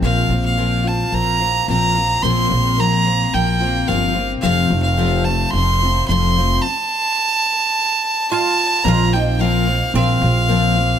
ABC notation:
X:1
M:4/4
L:1/16
Q:1/4=109
K:Fmix
V:1 name="Fiddle"
f3 f3 a2 b4 b4 | c'4 b4 g4 f3 z | f3 f3 a2 c'4 c'4 | a12 a4 |
b2 g2 f4 f8 |]
V:2 name="Oud"
z16 | z16 | z16 | z12 F4 |
F2 E2 C4 C8 |]
V:3 name="Steel-string acoustic guitar"
C16 | z16 | z16 | z16 |
z16 |]
V:4 name="Twelve-string acoustic guitar"
[B,,F,B,CF]2 [B,CF]2 [B,,F,B,CF]2 [B,CF]2 [F,B,CF]2 [B,CF]2 [B,,F,B,CF]2 [B,CF]2 | [B,,F,B,CF]2 [B,CF]2 [B,,F,B,CF]2 [B,CF]2 [F,B,CF]2 [B,CF]2 [B,,F,B,CF]2 [B,CF]2 | [F,,C,F,A,CF]2 [F,A,CF]2 [F,,C,F,A,CF]2 [F,A,CF]2 [F,A,CF]2 [F,A,CF]2 [F,,C,F,A,CF]2 [F,A,CF]2 | z16 |
[B,,F,B,CF]2 [B,CF]2 [B,,F,B,CF]2 [B,CF]2 [F,B,CF]2 [B,CF]2 [B,,F,B,CF]2 [B,CF]2 |]
V:5 name="Upright bass" clef=bass
B,,,2 B,,,6 B,,,4 B,,,4 | B,,,2 B,,,6 B,,,4 G,,,4 | F,,,2 F,,,6 F,,,4 F,,,4 | z16 |
B,,,8 B,,,2 B,,,6 |]